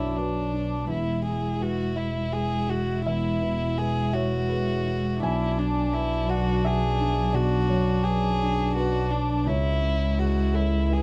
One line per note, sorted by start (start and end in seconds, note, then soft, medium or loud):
0.00 0.85 B1 soft
0.00 0.89 B1 soft
0.00 0.92 F#2 soft
0.00 0.85 F#3 soft
0.00 0.53 D4 soft
0.00 0.89 D4 soft
0.00 0.18 E4 soft
0.00 0.18 B4 soft
0.00 0.15 C#5 medium
0.00 0.91 D5 medium
0.16 0.89 D4 soft
0.16 0.74 F#4 soft
0.16 0.85 B4 soft
0.53 0.89 D4 soft
0.87 5.23 E1 soft
0.87 3.01 E2 soft
0.87 5.24 G#3 soft
0.87 5.22 E4 soft
0.87 1.24 E4 medium
1.25 1.82 E4 soft
1.25 1.63 G#4 soft
1.59 1.98 F#4 medium
1.59 2.17 B4 soft
1.96 2.34 E4 soft
1.96 2.54 E5 soft
2.32 2.91 G#4 soft
2.32 2.71 G#4 medium
2.68 3.27 E4 soft
2.68 3.06 F#4 medium
3.06 5.18 E2 medium
3.06 3.79 E4 medium
3.06 4.09 E5 medium
3.42 3.99 B2 soft
3.77 4.14 G#4 medium
3.77 4.34 B4 soft
4.13 5.22 F#4 medium
4.13 4.46 C#5 medium
4.13 4.70 E5 soft
4.48 5.07 G#4 soft
4.48 5.18 B4 medium
4.85 5.22 E4 soft
5.22 9.48 B1 medium
5.22 7.30 B1 medium
5.22 9.47 F#3 medium
5.22 9.48 D4 medium
5.22 5.60 E4 medium
5.22 6.26 G#5 medium
5.58 6.15 D4 soft
5.58 5.95 D4 medium
5.93 6.31 E4 medium
5.93 6.50 B4 soft
6.28 6.67 F#4 medium
6.28 6.85 D5 soft
6.28 6.62 F#5 medium
6.64 7.20 F#4 soft
6.64 7.36 G#4 medium
6.64 7.31 E5 medium
7.01 7.56 D4 soft
7.33 9.42 B1 medium
7.33 8.05 F#4 medium
7.33 7.67 D5 medium
7.68 8.27 F#2 soft
7.68 8.72 C#5 medium
8.04 8.76 G#4 medium
8.04 8.63 B4 soft
8.42 8.98 D4 soft
8.76 9.12 F#4 medium
8.76 9.33 F#4 soft
8.76 9.43 B4 medium
9.11 9.49 D4 medium
9.11 9.47 D4 soft
9.46 11.03 C#2 medium
9.46 11.03 G#3 medium
9.46 11.03 E4 medium
9.46 10.21 E4 medium
9.46 10.51 C#5 medium
9.82 10.40 C#4 soft
10.19 10.56 F#4 medium
10.19 10.76 G#4 soft
10.54 10.94 E4 medium
10.54 10.88 A4 medium
10.54 11.03 C#5 soft
10.90 11.03 E4 soft
10.90 11.03 G#4 medium
10.90 11.03 B4 medium